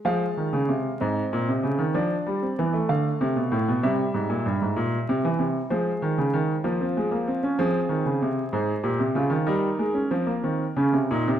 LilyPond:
<<
  \new Staff \with { instrumentName = "Grand piano" } { \time 12/8 \key f \minor \tempo 4. = 64 << { f''4. ees''4. d''4. f''4. | e''2. c''4. f'4. | aes'4. c''4. bes'2. | } \\ { aes4. c'4. d'8. c'16 b16 a4.~ a16 | g2. aes4. bes16 c'16 aes16 bes16 c'16 des'16 | c'4. aes'8 g'8 f'8 ees'8. des'16 c'16 bes16 c'8 des'8 ees'8 | } >> }
  \new Staff \with { instrumentName = "Grand piano" } { \clef bass \time 12/8 \key f \minor f8 ees16 des16 c8 aes,8 bes,16 c16 des16 ees16 f8 g8 e8 d8 c16 b,16 a,16 b,16 | c8 aes,16 bes,16 g,16 aes,16 bes,8 c16 e16 c8 f8 ees16 des16 ees8 f4. | f8 ees16 des16 c8 aes,8 bes,16 c16 des16 ees16 g8 aes8 f8 ees8 des16 c16 bes,16 c16 | }
>>